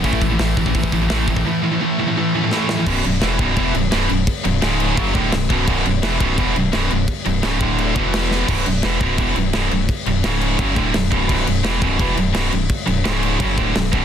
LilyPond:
<<
  \new Staff \with { instrumentName = "Distorted electric guitar" } { \clef bass \time 4/4 \key b \minor \tempo 4 = 171 <a, e a>8 <a, e>16 <a, e>16 <a, e>8 <a, e>16 <a, e>16 <a, e>8 <a, e>16 <a, e>16 <a, e a>8 <a, e>16 <a, e>16 | <a, e>8 <a, e>16 <a, e>16 <a, e>8 <a, e>16 <a, e>16 <a, e>8 <a, e>16 <a, e>16 <a, e a>8 <a, e>16 <a, e>16 | <b,, fis, b,>8 <b,, fis,>8 <e, b, e>8 <b,, fis, b,>8 <e, b, e>8 <b,, fis,>8 <b,, fis, b,>8 <b,, fis,>8 | r8 <b,, fis,>8 <cis, gis, cis>4 <fis, cis fis>8 <d, a, d>8 <b,, fis,>8 <b,, fis, b,>8 |
<b,, fis, b,>8 <b,, fis,>8 <e, b, e>8 <b,, fis, b,>8 <e, b, e>8 <b,, fis,>8 <b,, fis, b,>8 <b,, fis,>8 | r8 <b,, fis,>8 <cis, gis, cis>8 <d, a, d>4 <e, b, e>4. | <b,, fis, b,>8 <b,, fis,>8 <e, b, e>8 <b,, fis, b,>8 <e, b, e>8 <b,, fis,>8 <b,, fis, b,>8 <b,, fis,>8 | r8 <b,, fis,>8 <cis, gis, cis>4 <fis, cis fis>8 <d, a, d>8 <b,, fis,>8 <b,, fis, b,>8 |
<b,, fis, b,>8 <b,, fis,>8 <e, b, e>8 <b,, fis, b,>8 <e, b, e>8 <b,, fis,>8 <b,, fis, b,>8 <b,, fis,>8 | r8 <b,, fis,>8 <cis, gis, cis>4 <fis, cis fis>8 <d, a, d>8 <b,, fis,>8 <b,, fis, b,>8 | }
  \new Staff \with { instrumentName = "Distorted electric guitar" } { \clef bass \time 4/4 \key b \minor <a, e a>8 <a, e>16 <a, e>16 <a, e>8 <a, e>16 <a, e>16 <a, e>8 <a, e>16 <a, e>16 <a, e a>8 <a, e>16 <a, e>16 | <a, e>8 <a, e>16 <a, e>16 <a, e>8 <a, e>16 <a, e>16 <a, e>8 <a, e>16 <a, e>16 <a, e a>8 <a, e>16 <a, e>16 | <b,, fis, b,>8 <b,, fis,>8 <e, b, e>8 <b,, fis, b,>8 <e, b, e>8 <b,, fis,>8 <b,, fis, b,>8 <b,, fis,>8 | r8 <b,, fis,>8 <cis, gis, cis>4 <fis, cis fis>8 <d, a, d>8 <b,, fis,>8 <b,, fis, b,>8 |
<b,, fis, b,>8 <b,, fis,>8 <e, b, e>8 <b,, fis, b,>8 <e, b, e>8 <b,, fis,>8 <b,, fis, b,>8 <b,, fis,>8 | r8 <b,, fis,>8 <cis, gis, cis>8 <d, a, d>4 <e, b, e>4. | <b,, fis, b,>8 <b,, fis,>8 <e, b, e>8 <b,, fis, b,>8 <e, b, e>8 <b,, fis,>8 <b,, fis, b,>8 <b,, fis,>8 | r8 <b,, fis,>8 <cis, gis, cis>4 <fis, cis fis>8 <d, a, d>8 <b,, fis,>8 <b,, fis, b,>8 |
<b,, fis, b,>8 <b,, fis,>8 <e, b, e>8 <b,, fis, b,>8 <e, b, e>8 <b,, fis,>8 <b,, fis, b,>8 <b,, fis,>8 | r8 <b,, fis,>8 <cis, gis, cis>4 <fis, cis fis>8 <d, a, d>8 <b,, fis,>8 <b,, fis, b,>8 | }
  \new Staff \with { instrumentName = "Distorted electric guitar" } { \clef bass \time 4/4 \key b \minor <a, e a>8 <a, e a>8 <a, e a>8 <a, e a>8 <a, e a>8 <a, e a>8 <a, e a>8 <a, e a>8 | <a, e a>8 <a, e a>8 <a, e a>8 <a, e a>8 <a, e a>8 <a, e a>8 <a, e a>8 <a, e a>8 | <b,, fis, b,>8 <b,, fis,>8 <e, b, e>8 <b,, fis, b,>8 <e, b, e>8 <b,, fis,>8 <b,, fis, b,>8 <b,, fis,>8 | r8 <b,, fis,>8 <cis, gis, cis>4 <fis, cis fis>8 <d, a, d>8 <b,, fis,>8 <b,, fis, b,>8 |
<b,, fis, b,>8 <b,, fis,>8 <e, b, e>8 <b,, fis, b,>8 <e, b, e>8 <b,, fis,>8 <b,, fis, b,>8 <b,, fis,>8 | r8 <b,, fis,>8 <cis, gis, cis>8 <d, a, d>4 <e, b, e>4. | r1 | r1 |
r1 | r1 | }
  \new Staff \with { instrumentName = "Sub bass" } { \clef bass \time 4/4 \key b \minor a,,8 a,,8 a,,8 a,,8 a,,8 a,,8 a,,8 a,,8 | r1 | b,,,8 b,,,8 e,,8 b,,,8 e,,8 b,,,8 b,,,8 b,,,8 | r8 b,,,8 cis,,4 fis,,8 d,,8 b,,,8 b,,,8 |
b,,,8 b,,,8 e,,8 b,,,8 e,,8 b,,,8 b,,,8 b,,,8 | r8 b,,,8 cis,,8 d,,4 e,,4. | b,,,8 b,,,8 e,,8 b,,,8 e,,8 b,,,8 b,,,8 b,,,8 | r8 b,,,8 cis,,4 fis,,8 d,,8 b,,,8 b,,,8 |
b,,,8 b,,,8 e,,8 b,,,8 e,,8 b,,,8 b,,,8 b,,,8 | r8 b,,,8 cis,,4 fis,,8 d,,8 b,,,8 b,,,8 | }
  \new DrumStaff \with { instrumentName = "Drums" } \drummode { \time 4/4 <hho bd>16 bd16 <hho bd>8 <hho sn>8 <hho bd>16 bd16 <hho bd>16 bd16 <hho bd>8 <hho sn>8 <hho bd>16 bd16 | r4 r4 r4 sn8 sn8 | <cymc bd>8 cymc8 <cymc sn>8 <cymc bd>8 <cymc bd>8 cymc8 <cymc sn>8 cymc8 | <cymc bd>8 cymc8 <cymc sn>8 cymc8 <cymc bd>8 <cymc bd>8 <cymc sn>8 <cymc bd>8 |
<cymc bd>8 cymc8 <cymc sn>8 <cymc bd>8 <cymc bd>8 cymc8 <cymc sn>8 cymc8 | <cymc bd>8 cymc8 <cymc sn>8 <cymc bd>8 cymc8 <cymc bd>8 <cymc sn>8 sn8 | <cymc bd>8 cymc8 <cymc sn>8 <cymc bd>8 <cymc bd>8 cymc8 <cymc sn>8 cymc8 | <cymc bd>8 cymc8 <cymc sn>8 cymc8 <cymc bd>8 <cymc bd>8 <cymc sn>8 <cymc bd>8 |
<cymc bd>8 cymc8 <cymc sn>8 <cymc bd>8 <cymc bd>8 cymc8 <cymc sn>8 cymc8 | <cymc bd>8 cymc8 <cymc sn>8 cymc8 <cymc bd>8 <cymc bd>8 <cymc sn>8 <cymc bd>8 | }
>>